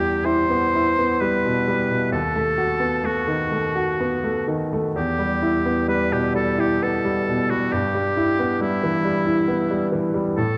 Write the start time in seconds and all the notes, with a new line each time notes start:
Already playing: E2 G3 E4 G4
0.00 G4
0.25 E4 C5
0.50 B3
0.75 E4
0.98 B3
1.21 G3 B4
1.45 B2
1.68 G3
1.90 B2
2.12 D#2 A4
2.35 A3
2.58 F#4
2.80 B3
3.04 A3 F#4
3.28 D#3
3.52 A3
3.75 F#4
4.00 B3
4.24 A3
4.48 D#3
4.73 A3
4.96 E2 G4
5.19 G3
5.42 E4
5.65 B3
5.88 G3 B4
6.11 B2 G4
6.35 G3 A4
6.58 E4 G4
6.82 B3 A4
7.05 G3
7.28 B2
7.50 G3 F#4
7.72 G2 G4
7.95 G3
8.17 E4
8.39 B3
8.61 G3 E4
8.83 E3
9.05 G3
9.27 E4
9.48 B3
9.71 G3
9.92 E3
10.14 G3
10.37 A2 A4